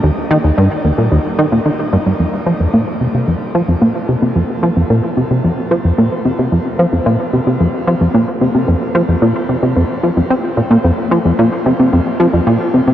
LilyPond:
\new Staff \with { instrumentName = "Analog synth bass" } { \clef bass \time 4/4 \key ees \major \tempo 4 = 111 ees,16 r16 ees16 ees,16 g,16 r16 ees,16 bes,16 ees,16 r16 ees16 bes,16 ees16 r16 g,16 g,16 | f,16 r16 f16 f,16 bes,16 r16 c16 c16 f,16 r16 f16 f,16 bes,16 r16 c16 c16 | f,16 r16 f16 f,16 bes,16 r16 c16 c16 f,16 r16 f16 f,16 bes,16 r16 c16 c16 | f,16 r16 f16 f,16 bes,16 r16 c16 c16 f,16 r16 f16 f,16 bes,16 r16 c16 c16 |
f,16 r16 f16 f,16 bes,16 r16 c16 c16 f,16 r16 f16 f,16 c'16 r16 bes,16 bes,16 | f,16 r16 f16 f,16 bes,16 r16 c16 c16 f,16 r16 f16 f,16 bes,16 r16 c16 c16 | }